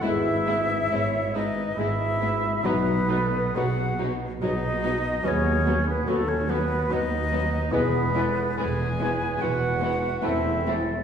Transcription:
0.01 0.80 G#1 medium
0.01 0.80 G#2 medium
0.01 0.35 G#3 medium
0.01 0.11 G#3 soft
0.01 0.11 B3 medium
0.01 1.36 E4 medium
0.01 0.35 E4 medium
0.01 0.11 E4 medium
0.01 1.32 E5 medium
0.05 0.49 B4 medium
0.46 0.54 G#3 soft
0.46 0.55 B3 soft
0.46 0.55 E4 medium
0.46 0.91 G#4 medium
0.90 1.67 G#1 medium
0.90 1.67 G#2 medium
0.90 1.01 G#3 soft
0.90 1.00 B3 medium
0.90 0.99 E4 soft
0.90 1.36 C#5 medium
1.34 1.43 G#3 soft
1.34 1.43 B3 soft
1.34 1.75 D#4 medium
1.34 1.43 E4 soft
1.34 1.80 B4 medium
1.34 1.81 D#5 medium
1.75 2.53 G#1 medium
1.75 2.53 G#2 medium
1.75 1.85 G#3 medium
1.75 2.65 E4 medium
1.75 2.63 G#4 medium
1.79 1.87 B3 soft
1.79 1.87 E4 soft
1.79 2.67 E5 medium
2.21 2.29 G#3 soft
2.21 2.30 B3 soft
2.21 2.29 E4 soft
2.63 3.44 B1 medium
2.63 3.95 B2 medium
2.63 3.45 B2 medium
2.63 2.72 F#3 soft
2.63 2.98 F#3 medium
2.63 3.57 B3 medium
2.63 2.73 B3 medium
2.63 2.72 D#4 medium
2.63 2.98 D#4 medium
2.63 3.10 F#4 medium
2.63 3.57 B4 medium
3.08 3.17 F#3 soft
3.08 3.19 B3 medium
3.08 3.17 D#4 soft
3.08 3.56 A4 medium
3.55 4.31 B1 medium
3.55 4.32 B2 medium
3.55 3.64 F#3 soft
3.55 3.65 B3 soft
3.55 3.64 D#4 soft
3.55 4.14 F#4 medium
3.55 3.99 G#4 soft
3.55 4.14 F#5 medium
3.97 4.07 F#3 soft
3.97 4.07 D#4 soft
3.97 4.42 F#4 medium
4.02 4.10 B3 soft
4.40 5.15 B1 medium
4.40 5.15 B2 medium
4.40 4.50 F#3 medium
4.40 4.52 B3 soft
4.40 5.26 D#4 medium
4.40 4.50 D#4 soft
4.40 4.85 G#4 medium
4.40 5.29 D#5 medium
4.83 4.92 F#3 soft
4.83 4.92 B3 soft
4.83 4.91 D#4 soft
4.83 5.25 F#4 medium
5.24 5.98 D#2 medium
5.24 5.55 F#3 medium
5.24 5.33 F#3 medium
5.24 5.33 B3 medium
5.24 5.55 B3 medium
5.24 5.34 B3 medium
5.24 5.90 C#4 medium
5.24 5.80 G#4 medium
5.24 5.88 C#5 medium
5.67 5.75 F#3 medium
5.67 5.75 B3 medium
5.88 6.10 B3 medium
5.88 6.09 B4 medium
6.07 6.81 D#2 medium
6.07 6.16 F#3 medium
6.07 6.31 A3 medium
6.07 6.16 B3 soft
6.07 6.18 B3 soft
6.07 6.93 F#4 medium
6.07 6.30 A4 medium
6.28 6.52 C#4 medium
6.28 6.51 C#5 medium
6.49 6.57 F#3 soft
6.49 6.58 B3 medium
6.49 6.92 B3 medium
6.49 6.60 B3 soft
6.49 6.94 B4 medium
6.91 7.63 D#2 medium
6.91 6.99 F#3 soft
6.91 6.99 B3 medium
6.91 7.00 B3 soft
6.91 7.74 D#4 medium
6.91 7.73 B4 medium
6.91 7.72 D#5 medium
7.31 7.39 F#3 soft
7.31 7.40 B3 medium
7.31 7.41 B3 medium
7.71 8.49 E1 medium
7.71 8.97 E2 medium
7.71 8.50 E2 medium
7.71 7.79 E3 medium
7.71 7.81 G#3 medium
7.71 8.05 G#3 medium
7.71 8.58 B3 medium
7.71 8.05 B3 medium
7.71 7.81 B3 medium
7.71 8.18 G#4 medium
7.71 8.58 B4 medium
8.15 8.24 E3 medium
8.15 8.23 G#3 medium
8.15 8.25 B3 medium
8.15 8.63 A4 medium
8.59 9.32 E1 medium
8.59 9.32 E2 medium
8.59 8.67 E3 soft
8.59 8.67 G#3 medium
8.59 8.68 B3 soft
8.59 9.39 G#4 medium
8.59 10.26 B4 medium
8.59 9.43 G#5 medium
9.00 9.09 E3 medium
9.00 9.08 G#3 medium
9.00 9.11 B3 soft
9.40 10.14 E1 medium
9.40 10.14 E2 medium
9.40 9.49 E3 medium
9.40 9.48 G#3 medium
9.40 9.51 B3 soft
9.40 10.22 F#4 medium
9.40 10.23 F#5 medium
9.81 9.90 E3 soft
9.81 9.89 G#3 medium
9.81 9.92 B3 medium
10.22 11.02 E1 medium
10.22 11.02 E2 medium
10.22 10.30 E3 medium
10.22 10.30 A3 medium
10.22 10.57 A3 medium
10.22 10.33 C4 medium
10.22 10.57 C4 medium
10.22 10.82 E4 medium
10.22 10.68 C5 medium
10.22 10.82 E5 medium
10.67 10.75 E3 medium
10.67 10.75 A3 medium
10.67 10.76 C4 medium
10.67 11.04 A4 medium

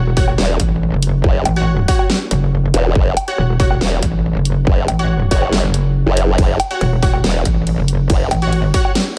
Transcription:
0.00 0.37 E1 loud
0.17 0.30 F#4 medium
0.17 0.30 C#5 medium
0.17 0.30 F#5 medium
0.17 kick loud
0.17 open hi-hat loud
0.28 low woodblock medium
0.38 0.58 E1 loud
0.38 snare loud
0.60 0.90 A1 medium
0.60 kick medium
0.60 closed hi-hat medium
0.92 1.22 F#1 loud
1.03 closed hi-hat medium
1.24 1.44 F#1 loud
1.24 kick loud
1.45 1.87 A1 loud
1.45 closed hi-hat medium
1.45 low woodblock medium
1.56 1.77 F#4 medium
1.56 1.77 C#5 medium
1.56 1.77 F#5 loud
1.56 closed hi-hat soft
1.88 2.09 F#4 loud
1.88 2.09 C#5 medium
1.88 2.09 F#5 loud
1.88 kick loud
1.88 open hi-hat loud
1.99 low woodblock medium
2.10 snare loud
2.31 2.72 F#1 loud
2.31 closed hi-hat medium
2.74 2.94 E1 loud
2.74 closed hi-hat medium
2.95 3.15 F#1 loud
2.95 kick loud
3.17 closed hi-hat medium
3.17 low woodblock medium
3.28 3.48 F#4 medium
3.28 3.48 C#5 medium
3.28 3.48 F#5 loud
3.28 closed hi-hat soft
3.38 3.79 E1 medium
3.60 3.73 F#4 medium
3.60 3.73 C#5 medium
3.60 3.73 F#5 medium
3.60 kick loud
3.60 open hi-hat medium
3.71 low woodblock medium
3.81 4.01 E1 loud
3.81 snare loud
4.03 4.33 A1 medium
4.03 kick medium
4.03 closed hi-hat medium
4.35 4.65 F#1 loud
4.45 closed hi-hat medium
4.67 4.87 F#1 loud
4.67 kick loud
4.88 5.29 A1 loud
4.88 closed hi-hat medium
4.88 low woodblock medium
4.99 5.20 F#4 medium
4.99 5.20 C#5 medium
4.99 5.20 F#5 loud
4.99 closed hi-hat soft
5.31 5.62 F#1 medium
5.31 5.52 F#4 loud
5.31 5.52 C#5 medium
5.31 5.52 F#5 loud
5.31 kick loud
5.31 open hi-hat medium
5.42 low woodblock medium
5.53 snare loud
5.63 6.05 F#1 loud
5.74 closed hi-hat medium
6.06 6.37 F#1 loud
6.17 closed hi-hat medium
6.38 6.58 F#1 loud
6.38 kick loud
6.38 ride medium
6.60 closed hi-hat medium
6.60 low woodblock medium
6.71 6.91 F#4 medium
6.71 6.91 C#5 medium
6.71 6.91 F#5 loud
6.71 closed hi-hat soft
6.81 7.22 E1 loud
6.81 ride soft
7.03 7.16 F#4 medium
7.03 7.16 C#5 medium
7.03 7.16 F#5 medium
7.03 kick loud
7.03 open hi-hat medium
7.14 low woodblock medium
7.24 7.44 E1 medium
7.24 snare loud
7.24 ride medium
7.45 7.76 A1 loud
7.45 kick medium
7.45 closed hi-hat medium
7.67 ride soft
7.78 8.08 F#1 loud
7.88 closed hi-hat medium
8.10 8.29 F#1 loud
8.10 kick loud
8.10 ride medium
8.31 8.72 A1 loud
8.31 closed hi-hat medium
8.31 low woodblock medium
8.42 8.63 F#4 medium
8.42 8.63 C#5 medium
8.42 8.63 F#5 loud
8.42 closed hi-hat soft
8.53 ride soft
8.74 8.95 F#4 medium
8.74 8.95 C#5 medium
8.74 8.95 F#5 loud
8.74 kick loud
8.74 open hi-hat medium
8.85 low woodblock medium
8.95 snare loud
8.95 ride medium

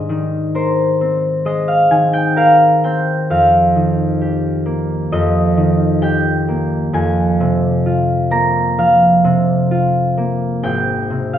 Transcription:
0.00 3.33 G#2 medium
0.00 1.45 D#5 medium
0.09 1.90 D#3 soft
0.55 2.35 A#4 medium
0.55 4.45 C5 medium
1.01 2.83 C4 soft
1.45 3.33 G#3 medium
1.45 5.11 D#5 medium
1.68 2.07 F5 medium
1.91 3.33 D#3 soft
1.91 2.30 G#5 medium
2.13 2.53 G5 medium
2.36 6.26 A#4 medium
2.36 3.29 F5 medium
2.84 5.15 C4 soft
2.84 3.62 G5 medium
3.30 5.11 F2 medium
3.30 7.21 F5 medium
3.75 5.15 D#3 soft
4.21 6.01 G4 soft
4.66 6.47 A#3 soft
5.12 6.92 F2 medium
5.12 6.98 D#5 medium
5.57 6.98 D#3 medium
6.02 6.98 G4 medium
6.02 6.97 G5 medium
6.48 8.30 A#3 soft
6.93 10.68 F2 medium
6.93 9.30 G#5 medium
7.40 9.23 C3 medium
7.86 9.70 F4 medium
8.31 10.16 A#3 medium
8.31 11.38 A#5 medium
8.78 10.67 F3 medium
8.78 10.67 F5 medium
9.24 10.67 C3 medium
9.71 10.67 F4 medium
10.17 11.38 A#3 soft
10.63 11.38 G#1 medium
10.63 11.38 G5 medium
11.10 11.38 C3 soft
11.33 11.38 F5 medium

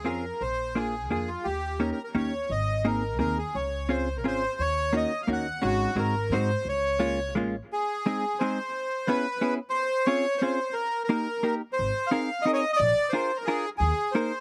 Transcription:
0.05 0.30 F2 medium
0.05 0.24 C4 soft
0.05 0.24 C#4 soft
0.05 0.24 F4 soft
0.05 0.24 G#4 soft
0.05 0.42 A#4 medium
0.41 1.11 A#1 medium
0.41 0.78 C5 medium
0.75 0.94 A#3 medium
0.75 0.94 D4 soft
0.75 0.94 F4 soft
0.75 1.10 G#4 medium
0.75 0.94 G#4 soft
1.10 1.34 F2 medium
1.10 1.29 A#3 soft
1.10 1.29 D4 soft
1.10 1.29 F4 soft
1.10 1.30 G#4 medium
1.10 1.29 G#4 medium
1.28 1.46 F4 medium
1.44 1.91 D#2 medium
1.44 1.81 G4 medium
1.79 1.98 A#3 medium
1.79 1.98 C#4 soft
1.79 1.98 D#4 soft
1.79 1.98 G4 soft
1.79 1.90 A#4 medium
1.92 2.02 A#4 medium
2.04 2.16 A#4 medium
2.15 2.37 D#2 medium
2.15 2.32 A#3 medium
2.15 2.33 C#4 soft
2.15 2.32 D#4 soft
2.15 2.33 G4 soft
2.15 2.52 C#5 medium
2.50 3.20 G#1 medium
2.50 2.87 D#5 medium
2.85 3.03 A#3 medium
2.85 3.03 C4 medium
2.85 3.03 D#4 soft
2.85 3.02 G#4 soft
2.85 3.18 A#4 medium
3.19 3.43 D#2 medium
3.19 3.38 A#3 soft
3.19 3.37 C4 soft
3.19 3.37 D#4 soft
3.19 3.37 G#4 soft
3.19 3.38 A#4 medium
3.38 3.56 G#4 medium
3.55 4.23 C#2 medium
3.55 3.91 C#5 medium
3.89 4.07 C4 medium
3.89 4.08 C#4 soft
3.89 4.08 F4 soft
3.89 4.08 G#4 medium
3.89 4.17 C5 medium
4.17 4.26 A#4 medium
4.23 4.46 G#1 medium
4.23 4.42 C4 soft
4.23 4.43 C#4 soft
4.23 4.43 F4 soft
4.23 4.43 G#4 soft
4.27 4.62 C5 medium
4.59 5.04 D#2 medium
4.59 4.96 C#5 loud
4.93 5.11 A#3 medium
4.93 5.11 C#4 soft
4.93 5.11 D#4 soft
4.93 5.11 F#4 medium
4.93 5.22 D#5 medium
5.22 5.30 F5 medium
5.27 5.51 D#2 medium
5.27 5.46 A#3 medium
5.27 5.46 C#4 soft
5.27 5.46 D#4 medium
5.27 5.46 F#4 medium
5.33 5.66 F#5 medium
5.62 5.85 G#1 medium
5.62 5.90 G#3 medium
5.62 5.90 C#4 medium
5.62 5.90 D#4 soft
5.62 5.91 F#4 medium
5.62 6.00 F#4 loud
5.95 6.31 G#1 medium
5.95 6.14 G#3 medium
5.95 6.14 C4 soft
5.95 6.14 D#4 soft
5.95 6.14 F#4 medium
5.95 6.34 A#4 medium
6.30 6.53 G#2 medium
6.30 6.50 G#3 soft
6.30 6.50 C4 soft
6.30 6.50 D#4 soft
6.30 6.50 F#4 medium
6.30 6.68 C5 medium
6.65 7.36 C#2 medium
6.65 7.34 C#5 medium
6.99 7.18 G#3 medium
6.99 7.19 A#3 soft
6.99 7.19 C#4 soft
6.99 7.19 F4 medium
7.35 7.59 A1 medium
7.35 7.54 G#3 medium
7.35 7.55 A#3 medium
7.35 7.55 C#4 soft
7.35 7.55 F4 medium
7.73 8.43 G#4 medium
8.06 8.24 G#3 medium
8.06 8.24 C4 medium
8.06 8.24 D#4 soft
8.06 8.24 G#4 medium
8.39 8.58 G#3 medium
8.39 8.58 C4 medium
8.39 8.58 D#4 soft
8.39 8.58 G#4 medium
8.39 9.09 C5 medium
9.07 9.25 B3 medium
9.07 9.25 C#4 medium
9.07 9.25 E4 medium
9.07 9.25 G#4 medium
9.07 9.54 B4 medium
9.41 9.58 B3 medium
9.41 9.58 C#4 medium
9.41 9.58 E4 soft
9.41 9.58 G#4 medium
9.70 10.07 C5 loud
10.06 10.25 C4 medium
10.06 10.25 C#4 medium
10.06 10.25 F4 medium
10.06 10.25 G#4 medium
10.06 10.42 C#5 medium
10.38 10.59 C4 medium
10.38 10.74 C5 medium
10.42 10.59 C#4 soft
10.42 10.59 F4 soft
10.42 10.59 G#4 medium
10.73 11.03 A#4 medium
11.04 11.55 A#4 medium
11.09 11.27 A#3 medium
11.09 11.27 D#4 medium
11.09 11.27 G4 soft
11.09 11.27 A#4 medium
11.43 11.61 A#3 medium
11.43 11.61 D#4 soft
11.43 11.61 G4 soft
11.43 11.61 A#4 medium
11.73 12.11 C5 medium
11.79 11.90 G#1 medium
12.07 12.45 F5 medium
12.11 12.29 C4 medium
12.11 12.29 D#4 medium
12.11 12.29 G#4 medium
12.11 12.29 A#4 medium
12.42 12.63 C4 medium
12.42 12.51 D#5 medium
12.46 12.63 D#4 medium
12.46 12.63 G#4 soft
12.46 12.63 A#4 soft
12.53 12.60 C#5 medium
12.53 12.71 D#5 medium
12.73 13.13 D5 loud
12.73 12.80 D#5 medium
12.80 12.91 A#1 medium
13.09 13.31 D4 medium
13.09 13.38 C5 medium
13.13 13.30 F4 medium
13.13 13.31 G#4 soft
13.13 13.31 A#4 medium
13.36 13.46 A#4 medium
13.45 13.65 D4 medium
13.45 13.65 F4 medium
13.45 13.70 G#4 medium
13.45 13.65 G#4 soft
13.45 13.65 A#4 medium
13.78 13.91 D#2 medium
13.78 14.13 G#4 medium
14.12 14.31 A#3 medium
14.12 14.31 D#4 medium
14.12 14.31 G#4 soft
14.12 14.40 C5 medium
14.16 14.31 A#4 medium

